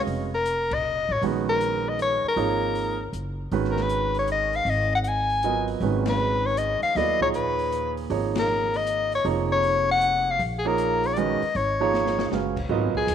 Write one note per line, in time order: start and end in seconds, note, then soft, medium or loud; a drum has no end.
0.00 0.28 G#3 medium
0.00 0.28 C#4 medium
0.00 0.28 F#4 medium
0.00 0.28 B4 medium
0.00 0.28 F5 medium
0.07 1.05 F1 medium
0.07 open hi-hat soft
0.35 0.75 A#4 medium
0.45 closed hi-hat soft
0.71 1.13 D#5 medium
0.71 kick medium
0.71 ride medium
1.09 1.21 A1 medium
1.09 1.24 C#5 medium
1.22 2.20 A#1 medium
1.22 2.29 D#3 medium
1.22 2.29 G#3 medium
1.22 2.30 B3 medium
1.22 2.29 C#4 medium
1.22 2.30 F#4 medium
1.22 open hi-hat soft
1.49 1.91 A#4 medium
1.61 closed hi-hat medium
1.89 2.01 D#5 medium
1.99 2.24 C#5 medium
1.99 closed hi-hat soft
2.24 muted upright bass stroke soft
2.28 3.12 A#4 medium
2.36 3.09 G#1 medium
2.36 2.95 F3 medium
2.36 2.95 A#3 medium
2.36 2.95 D#4 medium
2.36 2.95 G#4 medium
2.36 2.96 C#5 medium
2.36 open hi-hat soft
2.75 open hi-hat soft
3.13 3.49 F#1 medium
3.13 closed hi-hat soft
3.52 4.62 G#1 medium
3.52 4.59 D#3 medium
3.52 4.59 G#3 medium
3.52 4.59 C#4 medium
3.52 4.59 F#4 medium
3.52 4.59 B4 medium
3.52 open hi-hat soft
3.64 snare soft
3.71 3.83 A#4 medium
3.77 snare soft
3.82 4.18 B4 medium
3.89 closed hi-hat soft
4.14 open hi-hat soft
4.19 4.29 C#5 medium
4.27 closed hi-hat soft
4.32 4.57 D#5 medium
4.53 4.71 F5 medium
4.53 open hi-hat soft
4.65 5.76 G#1 medium
4.65 open hi-hat soft
4.70 4.93 D#5 medium
4.95 4.98 F#5 medium
5.04 5.09 F#5 medium
5.04 closed hi-hat medium
5.08 5.70 G#5 medium
5.30 open hi-hat soft
5.43 6.02 F#3 medium
5.43 6.02 B3 medium
5.43 6.02 F4 soft
5.43 6.02 A#4 soft
5.43 6.02 D#5 medium
5.43 closed hi-hat soft
5.68 open hi-hat soft
5.80 6.78 G#1 medium
5.80 6.88 D#3 medium
5.80 6.89 G#3 medium
5.80 6.89 C#4 medium
5.80 6.89 F#4 medium
5.80 6.89 B4 medium
5.80 open hi-hat soft
6.06 6.47 B4 medium
6.06 snare medium
6.06 ride medium
6.46 6.60 C#5 medium
6.57 6.82 D#5 medium
6.57 closed hi-hat soft
6.82 6.98 F5 medium
6.82 muted upright bass stroke soft
6.82 open hi-hat soft
6.95 8.06 D#2 medium
6.95 7.19 F#3 medium
6.95 7.19 B3 medium
6.95 7.19 E4 medium
6.95 7.19 A4 soft
6.95 7.19 D5 medium
6.95 7.21 D#5 medium
6.95 snare soft
6.95 open hi-hat soft
7.21 8.03 A#2 medium
7.21 8.03 F3 medium
7.21 8.03 D#4 medium
7.21 8.03 G#4 medium
7.21 7.28 C#5 medium
7.21 8.03 C#5 medium
7.21 kick medium
7.34 7.94 B4 medium
7.34 closed hi-hat soft
7.59 open hi-hat soft
7.72 closed hi-hat soft
7.97 open hi-hat soft
8.10 9.21 G#1 medium
8.10 9.17 F3 medium
8.10 9.17 A#3 medium
8.10 9.18 D#4 medium
8.10 9.18 G#4 medium
8.10 9.18 C#5 medium
8.10 open hi-hat soft
8.35 8.78 A#4 medium
8.35 snare medium
8.35 ride medium
8.74 9.14 D#5 medium
8.74 open hi-hat soft
8.87 closed hi-hat medium
9.12 9.26 C#5 medium
9.12 open hi-hat soft
9.24 10.36 F1 medium
9.24 10.32 F3 medium
9.24 10.32 A#3 medium
9.24 10.32 D#4 medium
9.24 10.32 G#4 medium
9.24 10.33 C#5 medium
9.24 open hi-hat soft
9.52 9.87 C#5 medium
9.63 open hi-hat soft
9.91 10.32 F#5 loud
10.01 closed hi-hat soft
10.30 10.42 F5 medium
10.39 11.37 A#1 medium
10.39 open hi-hat soft
10.59 10.69 G#4 medium
10.65 11.14 F3 medium
10.65 11.14 A#3 medium
10.65 11.14 D#4 medium
10.65 11.14 G#4 medium
10.65 11.08 A#4 medium
10.65 11.15 C#5 medium
10.78 closed hi-hat soft
11.03 11.15 C#5 medium
11.03 open hi-hat soft
11.14 11.39 D#3 medium
11.14 11.40 G#3 medium
11.14 11.40 C#4 medium
11.14 11.40 F#4 medium
11.14 11.20 D5 medium
11.14 closed hi-hat soft
11.18 11.40 B4 medium
11.18 11.58 D#5 medium
11.42 muted upright bass stroke soft
11.42 open hi-hat soft
11.55 12.28 G#1 medium
11.55 12.32 C#5 medium
11.55 open hi-hat soft
11.81 12.29 F3 medium
11.81 12.29 A#3 medium
11.81 12.29 D#4 medium
11.81 12.30 G#4 medium
11.81 12.30 C#5 medium
11.94 snare soft
12.06 snare soft
12.19 snare medium
12.32 12.67 F#1 medium
12.32 12.54 G#3 soft
12.32 12.55 C#4 soft
12.32 12.55 F#4 soft
12.32 12.55 B4 soft
12.32 12.55 F5 medium
12.32 snare medium
12.57 kick medium
12.57 crash medium
12.69 12.93 G#1 medium
12.69 13.15 F#3 medium
12.69 13.15 B3 medium
12.69 13.15 F4 medium
12.69 13.15 A#4 medium
12.69 13.15 D#5 medium
12.94 13.15 G#4 medium
12.94 muted upright bass stroke soft
12.94 kick medium
13.07 13.15 D#2 medium
13.07 hi-hat pedal medium
13.07 ride medium